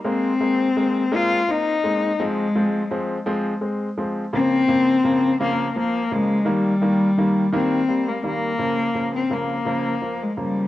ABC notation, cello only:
X:1
M:6/8
L:1/16
Q:3/8=56
K:Bbdor
V:1 name="Cello"
C6 F2 E4 | A,4 z8 | C6 B,2 B,2 A,2 | G,6 C3 B, B,2- |
B,3 C B,4- B, A, G,2 |]